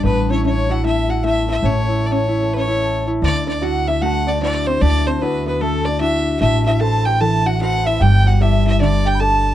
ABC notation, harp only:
X:1
M:4/4
L:1/8
Q:"Swing" 1/4=151
K:A
V:1 name="Harp"
A, E A, E A, E A, E | A, E A E A E A E | [K:Dmix] D,2 [DEF]2 A,2 [DEF]2 | A,2 [DEF]2 A,2 [DEF]2 |
A,2 [ABc]2 E,2 [ABc]2 | G,2 [GAd]2 D,2 [GAd]2 |]